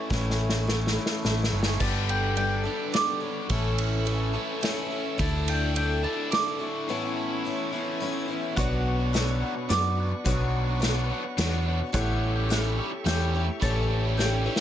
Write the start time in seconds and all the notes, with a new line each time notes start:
Already playing: A3 C#4 E4 C#5
0.10 A1 A2 E3 A3 C#4 E4, kick, snare
0.30 snare
0.49 snare
0.65 E3 A3 C#4 E4, snare
0.87 snare
0.95 A3 C#4 E4
1.06 snare
1.22 A1 E3 A3 C#4 E4, snare
1.44 snare
1.52 G1 A2 E3 A3 C#4 E4
1.63 snare
1.79 G1 G2 D3 G3 B3 D4 A4 G5 A5 B5 D6, kick, crash
1.83 G4
2.09 G5, ride
2.35 G3 B3 D4 A4 G5, ride
2.64 G2 D3 G3 B3 D4 G4 A4 E5
2.92 G3 B3 D4 A4 D5, snare, ride
3.20 B3 D4 A4 C#5
3.49 A1 A2 E3 A3 C#4 E4 A4 E5 C#6 E6, kick, ride
3.78 ride
4.05 E3 A3 C#4 A4, ride
4.33 A2 E3 A3 C#4 E4 A4
4.61 E3 A3 C#4 A4, snare, ride
4.90 A3 C#4 A4
5.18 D2 D3 A3 D4 E4 A5 D6, kick, ride
5.48 G5, ride
5.74 D3 A3 D4 E4 G5, ride
6.03 D3 A3 D4 E4 A5
6.07 A3
6.31 D3 A3 D4 E4 D6, snare, ride
6.59 A3 D4 E4 C#6
6.87 A2 E3 A3 B3 C#4 E4 C#5 B5
7.45 E3 B3 C#4 E4
7.72 A2 E3 A3 B3 C#4 E4
8.00 E3 B3 C#4 E4
8.28 B3 C#4 E4
8.56 B1 B2 F#3 B3 D4 F#4 B4 C#5 F#5 C#6, kick, closed hi-hat
8.98 B3 D4 F#4
9.13 B3 D4 F#4 E5, snare, closed hi-hat
9.17 C#5
9.41 F#3 B3 D4 F#4
9.55 muted overdriven electric guitar stroke
9.69 F#2 B2 F#3 B3 D4 F#4 D5, snare, closed hi-hat
9.83 B3 D4 F#4
9.97 F#3 B3 D4 F#4
10.12 muted overdriven electric guitar stroke
10.25 B1 B2 F#3 B3 D4 F#4 C#5 F#5, kick, closed hi-hat
10.67 B3 D4 F#4
10.80 B3 D4 F#4 C#5, snare, closed hi-hat
11.09 F#3 B3 D4 F#4
11.24 muted overdriven electric guitar stroke
11.37 E2 B2 F#3 B3 D4 F#4 C#5, snare, closed hi-hat
11.52 B3 D4 F#4
11.66 F#3 B3 D4 F#4
11.80 muted overdriven electric guitar stroke
11.92 A1 A2 E3 G3 A3 C#4 E4 G4 A4 C#5 E5 F#5, kick, closed hi-hat
12.34 G3 C#4 G4
12.49 A3 E4 G4 C#5 E5, snare, closed hi-hat
12.76 E3 G3 C#4 G4
12.91 muted overdriven electric guitar stroke
13.04 E2 A2 E3 G3 A3 C#4 E4 G4 G5, snare, closed hi-hat
13.08 C#5
13.18 G3 C#4 G4
13.32 E3 G3 C#4 G4 C#5
13.36 E4
13.46 muted overdriven electric guitar stroke
13.60 A1 A2 E3 G3 A3 C#4 E4 G4 C#5 A5, kick, closed hi-hat
14.03 G3 C#4 G4
14.17 A3 E4 G4 C#5 G5, snare
14.45 E3 G3 C#4 E4 G4 C#5
14.56 snare